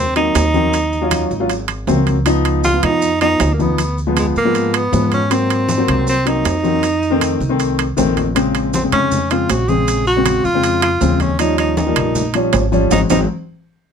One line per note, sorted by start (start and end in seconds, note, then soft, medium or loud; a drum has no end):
0.00 0.31 D#2 medium
0.00 0.14 C4 loud
0.16 0.43 F#3 medium
0.16 0.43 A#3 medium
0.16 0.43 C4 medium
0.16 1.65 D#4 loud
0.16 high conga soft
0.16 high timbale medium
0.16 maracas soft
0.35 1.25 D#2 loud
0.35 high conga soft
0.35 high timbale medium
0.35 low timbale medium
0.35 maracas medium
0.54 0.73 F#3 medium
0.54 0.74 A#3 medium
0.54 0.74 C4 medium
0.54 high conga medium
0.54 maracas soft
0.73 high conga soft
0.73 high timbale medium
0.73 maracas medium
0.93 high conga soft
0.93 maracas soft
1.02 1.29 F#3 medium
1.02 1.29 C#4 medium
1.02 1.29 F4 medium
1.11 high conga medium
1.11 high timbale loud
1.11 low timbale medium
1.11 maracas medium
1.31 1.84 G#1 medium
1.31 high conga soft
1.31 maracas soft
1.40 1.50 F#3 medium
1.40 1.50 C#4 medium
1.40 1.50 F4 medium
1.49 high conga soft
1.49 high timbale medium
1.49 maracas medium
1.68 high conga soft
1.68 high timbale medium
1.68 maracas soft
1.87 2.78 C#2 medium
1.87 2.15 F#3 medium
1.87 2.15 A#3 medium
1.87 2.15 C4 medium
1.87 high conga medium
1.87 low timbale medium
1.87 maracas medium
2.07 high conga medium
2.07 high timbale medium
2.07 maracas soft
2.26 2.60 F3 medium
2.26 2.60 B3 medium
2.26 2.60 D#4 loud
2.26 high conga soft
2.26 high timbale medium
2.26 maracas medium
2.45 high conga soft
2.45 high timbale medium
2.45 maracas soft
2.64 2.85 F4 loud
2.64 high conga medium
2.64 low timbale medium
2.64 maracas medium
2.74 3.07 F3 medium
2.74 3.07 B3 medium
2.74 3.08 F4 medium
2.83 3.37 F2 medium
2.83 3.21 D#4 loud
2.83 high conga soft
2.83 low conga medium
2.83 high timbale medium
2.83 maracas soft
3.02 high conga soft
3.02 maracas medium
3.21 3.49 F3 medium
3.21 3.49 B3 medium
3.21 3.54 D#4 loud
3.21 3.49 D#4 medium
3.21 high conga soft
3.21 high timbale medium
3.21 maracas soft
3.40 4.30 D2 medium
3.40 high conga soft
3.40 high timbale medium
3.40 low timbale medium
3.40 maracas medium
3.53 3.62 A#3 medium
3.59 3.79 F3 medium
3.59 3.79 B3 medium
3.59 3.98 B3 medium
3.59 3.79 D#4 medium
3.59 high conga medium
3.59 maracas soft
3.78 high conga soft
3.78 high timbale medium
3.78 maracas medium
3.98 high conga soft
3.98 maracas soft
4.07 4.34 F3 medium
4.07 4.34 G#3 medium
4.07 4.34 B3 medium
4.17 4.27 G#3 medium
4.17 high conga medium
4.17 high timbale medium
4.17 low timbale medium
4.17 maracas medium
4.36 4.89 G#2 medium
4.36 4.77 A#3 loud
4.36 high conga soft
4.36 maracas soft
4.45 4.79 F3 medium
4.45 4.79 G#3 medium
4.45 4.79 B3 medium
4.55 high conga soft
4.55 high timbale medium
4.55 maracas medium
4.74 5.13 B3 medium
4.74 high conga soft
4.74 high timbale medium
4.74 maracas soft
4.92 5.82 G#2 medium
4.92 5.19 F3 medium
4.92 5.20 G#3 medium
4.92 5.20 B3 medium
4.92 high conga medium
4.92 low timbale medium
4.92 maracas medium
5.11 5.34 C#4 loud
5.11 high conga medium
5.11 high timbale medium
5.11 maracas soft
5.30 5.64 F#3 medium
5.30 5.64 A#3 medium
5.30 5.65 C4 medium
5.30 6.08 C4 medium
5.30 high conga soft
5.30 high timbale medium
5.30 maracas medium
5.50 high conga soft
5.50 high timbale medium
5.50 maracas soft
5.68 high conga medium
5.68 low timbale medium
5.68 maracas medium
5.78 6.12 F#3 medium
5.78 6.12 A#3 medium
5.78 6.12 C4 medium
5.88 6.41 C2 medium
5.88 high conga soft
5.88 low conga medium
5.88 high timbale medium
5.88 maracas soft
6.07 6.29 C4 loud
6.07 high conga soft
6.07 maracas medium
6.26 6.53 F#3 medium
6.26 6.53 A#3 medium
6.26 6.53 C4 medium
6.26 7.79 D#4 loud
6.26 high conga soft
6.26 high timbale medium
6.26 maracas soft
6.45 7.34 F2 medium
6.45 high conga soft
6.45 high timbale medium
6.45 low timbale medium
6.45 maracas medium
6.63 6.83 F#3 medium
6.63 6.83 A#3 medium
6.63 6.83 C4 medium
6.63 high conga medium
6.63 maracas soft
6.83 high conga soft
6.83 high timbale medium
6.83 maracas medium
7.03 high conga soft
7.03 maracas soft
7.11 7.38 D#3 medium
7.11 7.38 A3 medium
7.11 7.38 C4 loud
7.21 high conga medium
7.21 high timbale medium
7.21 low timbale medium
7.21 maracas medium
7.40 7.93 C2 medium
7.40 high conga soft
7.40 maracas soft
7.49 7.83 D#3 medium
7.49 7.83 A3 medium
7.49 7.83 C4 medium
7.59 high conga soft
7.59 high timbale medium
7.59 maracas medium
7.79 high conga soft
7.79 high timbale medium
7.79 maracas soft
7.97 8.86 A#1 medium
7.97 8.24 D#3 medium
7.97 8.24 A3 medium
7.97 8.24 C4 loud
7.97 high conga medium
7.97 low timbale medium
7.97 maracas medium
8.17 high conga medium
8.17 high timbale medium
8.17 maracas soft
8.35 8.68 C#3 medium
8.35 8.69 G#3 medium
8.35 8.69 C4 medium
8.35 high conga soft
8.35 high timbale medium
8.35 maracas medium
8.55 high conga soft
8.55 high timbale medium
8.55 maracas soft
8.74 8.83 C4 medium
8.74 high conga loud
8.74 low timbale medium
8.74 maracas medium
8.83 9.16 C#3 medium
8.83 9.16 G#3 medium
8.83 9.17 C4 medium
8.92 9.45 F2 medium
8.92 9.33 C#4 loud
8.92 high conga soft
8.92 low conga medium
8.92 high timbale medium
8.92 maracas soft
9.12 high conga soft
9.12 low conga medium
9.12 maracas medium
9.30 9.57 C#3 medium
9.30 9.57 G#3 medium
9.30 9.57 C4 medium
9.30 9.52 F4 medium
9.30 high conga soft
9.30 high timbale medium
9.30 maracas soft
9.49 10.39 A#1 medium
9.49 9.70 F#4 medium
9.49 high conga soft
9.49 high timbale medium
9.49 low timbale medium
9.49 maracas medium
9.68 10.02 C#3 medium
9.68 10.02 G#3 medium
9.68 10.02 C4 medium
9.68 10.06 G#4 loud
9.68 high conga medium
9.68 maracas soft
9.88 high timbale medium
9.88 maracas medium
10.06 10.46 F#4 loud
10.06 high conga soft
10.06 maracas soft
10.16 10.43 C#3 medium
10.16 10.43 G#3 medium
10.16 10.43 C4 medium
10.26 high conga medium
10.26 high timbale medium
10.26 low timbale medium
10.26 maracas medium
10.45 10.98 F2 medium
10.45 10.82 F4 loud
10.45 high conga soft
10.45 maracas soft
10.54 10.87 C#3 medium
10.54 10.88 G#3 medium
10.54 10.88 C4 medium
10.63 high conga soft
10.63 high timbale medium
10.63 maracas medium
10.82 11.22 F4 medium
10.82 high conga soft
10.82 high timbale loud
10.82 maracas soft
11.01 11.91 D#2 loud
11.01 11.28 C#3 medium
11.01 11.28 G#3 medium
11.01 11.28 C4 medium
11.01 high conga medium
11.01 low timbale medium
11.01 maracas medium
11.20 11.39 C#4 medium
11.20 high conga medium
11.20 high timbale medium
11.20 maracas soft
11.39 11.73 F3 medium
11.39 11.73 G3 medium
11.39 11.73 C#4 medium
11.39 11.57 D#4 medium
11.39 high conga soft
11.39 high timbale medium
11.39 maracas medium
11.58 11.76 D#4 medium
11.58 high conga soft
11.58 high timbale medium
11.58 maracas soft
11.77 12.50 D#4 medium
11.77 high conga loud
11.77 low timbale medium
11.77 maracas medium
11.87 12.20 F3 medium
11.87 12.20 G3 medium
11.87 12.20 A#3 medium
11.96 12.50 A#1 medium
11.96 high conga soft
11.96 low conga medium
11.96 high timbale loud
11.96 maracas soft
12.15 high conga soft
12.15 low conga medium
12.15 maracas medium
12.34 12.61 F3 medium
12.34 12.61 G3 medium
12.34 12.62 C#4 medium
12.34 high conga soft
12.34 high timbale medium
12.34 maracas soft
12.53 12.89 G#1 loud
12.53 high conga soft
12.53 high timbale medium
12.53 low timbale medium
12.53 maracas medium
12.72 12.91 F3 medium
12.72 12.92 G3 medium
12.72 12.92 C#4 medium
12.72 high conga medium
12.72 maracas soft
12.91 13.06 G#1 medium
12.91 13.04 F#3 medium
12.91 13.04 G#3 medium
12.91 13.04 C4 medium
12.91 13.01 D#4 medium
12.91 high conga loud
12.91 high timbale medium
12.91 maracas medium
13.10 13.25 G#1 loud
13.10 13.23 F#3 medium
13.10 13.23 G#3 medium
13.10 13.23 C4 medium
13.10 13.20 D#4 medium
13.10 high conga loud
13.10 high timbale loud
13.10 maracas loud